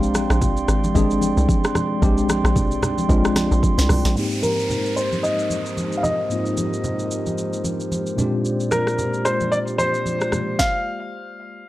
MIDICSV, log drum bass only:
0, 0, Header, 1, 2, 480
1, 0, Start_track
1, 0, Tempo, 535714
1, 1811, Time_signature, 4, 2, 24, 8
1, 10472, End_track
2, 0, Start_track
2, 0, Title_t, "Log drum bass"
2, 0, Program_c, 0, 39
2, 0, Note_on_c, 0, 34, 112
2, 245, Note_off_c, 0, 34, 0
2, 271, Note_on_c, 0, 34, 100
2, 588, Note_off_c, 0, 34, 0
2, 613, Note_on_c, 0, 32, 96
2, 836, Note_off_c, 0, 32, 0
2, 852, Note_on_c, 0, 32, 103
2, 1205, Note_off_c, 0, 32, 0
2, 1230, Note_on_c, 0, 36, 91
2, 1324, Note_off_c, 0, 36, 0
2, 1813, Note_on_c, 0, 34, 109
2, 2166, Note_off_c, 0, 34, 0
2, 2190, Note_on_c, 0, 34, 100
2, 2530, Note_on_c, 0, 36, 90
2, 2544, Note_off_c, 0, 34, 0
2, 2755, Note_off_c, 0, 36, 0
2, 2772, Note_on_c, 0, 34, 93
2, 3125, Note_off_c, 0, 34, 0
2, 3150, Note_on_c, 0, 34, 90
2, 3244, Note_off_c, 0, 34, 0
2, 3389, Note_on_c, 0, 36, 99
2, 3484, Note_off_c, 0, 36, 0
2, 3491, Note_on_c, 0, 36, 92
2, 3621, Note_off_c, 0, 36, 0
2, 3631, Note_on_c, 0, 34, 93
2, 3724, Note_off_c, 0, 34, 0
2, 10472, End_track
0, 0, End_of_file